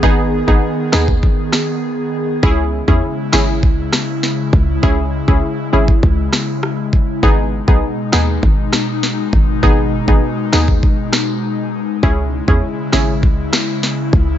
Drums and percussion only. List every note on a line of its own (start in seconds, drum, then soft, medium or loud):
0.03 kick loud
0.48 kick medium
0.92 cross-stick medium
0.92 snare loud
1.08 kick medium
1.23 kick loud
1.52 cross-stick loud
1.52 snare loud
2.43 kick loud
2.88 kick medium
3.33 cross-stick medium
3.33 snare loud
3.63 kick loud
3.93 cross-stick loud
3.93 snare loud
4.23 snare medium
4.53 kick medium
4.83 kick loud
5.28 kick medium
5.88 kick medium
6.03 kick loud
6.33 cross-stick loud
6.33 snare loud
6.63 cross-stick loud
6.93 kick medium
7.23 kick loud
7.68 kick medium
8.12 cross-stick medium
8.12 snare loud
8.43 kick loud
8.73 cross-stick loud
8.73 snare loud
9.03 snare medium
9.33 kick medium
9.63 kick loud
10.08 kick medium
10.53 cross-stick medium
10.53 snare loud
10.68 kick medium
10.83 kick medium
11.13 cross-stick medium
11.13 snare loud
12.03 kick loud
12.48 kick medium
12.92 cross-stick medium
12.92 snare loud
13.23 kick loud
13.53 cross-stick loud
13.53 snare loud
13.83 snare medium
14.13 kick medium